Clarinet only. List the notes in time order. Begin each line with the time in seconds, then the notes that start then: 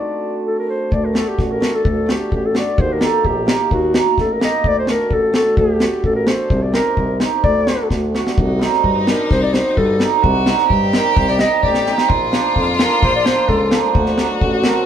Already playing: D5
0.47 A4
0.59 A#4
0.69 C5
0.93 D5
1.05 A#4
1.16 A4
1.28 G4
1.41 F#4
1.51 A#4
1.75 A4
2.11 G4
2.35 G4
2.46 A4
2.58 D5
2.80 C5
2.93 A#4
3.04 A4
3.26 G4
3.50 G4
3.73 F#4
4.20 A4
4.32 A#4
4.44 D#5
4.68 D5
4.79 C5
4.90 A#4
5.13 A4
5.36 A4
5.58 G4
6.05 A4
6.16 A#4
6.28 C5
6.62 D5
6.74 A#4
7.44 D5
9.07 A#4
9.32 C5
9.43 D5
9.54 C5
9.78 A4
10.95 A#4
11.17 C5
11.29 D5
11.40 D#5
11.63 D5
12.82 A#4
13.04 C5
13.16 D5
13.26 C5
13.49 A4
14.63 A#4